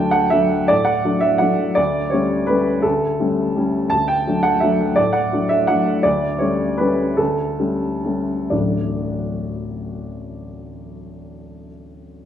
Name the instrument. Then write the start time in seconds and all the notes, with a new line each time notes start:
upright piano
Already playing: D2 F#3 A3 D4 G5
0.11 F#5
0.30 F#3 A3 D4 E5
0.68 A2 D5
0.85 F#5
1.05 F#3 A3 D4
1.21 E5
1.38 F#3 A3 D4 F#5
1.75 D2 D5
2.10 G3 A3 C#4 C#5
2.47 G3 A3 C#4 B4
2.82 D2 A4
3.20 G3 A3 C#4
3.56 G3 A3 C#4
3.90 D2 A5
4.08 G5
4.27 F#3 A3 D4
4.43 F#5
4.60 F#3 A3 D4 E5
4.96 A2 D5
5.13 F#5
5.33 F#3 A3 D4
5.49 E5
5.67 F#3 A3 D4 F#5
6.03 D2 D5
6.39 G3 A3 C#4 C#5
6.78 G3 A3 C#4 B4
7.17 D2 A4
7.59 G3 A3 C#4
8.04 G3 A3 C#4
8.50 D1 A1 F#3 A3 D4 F#4 D5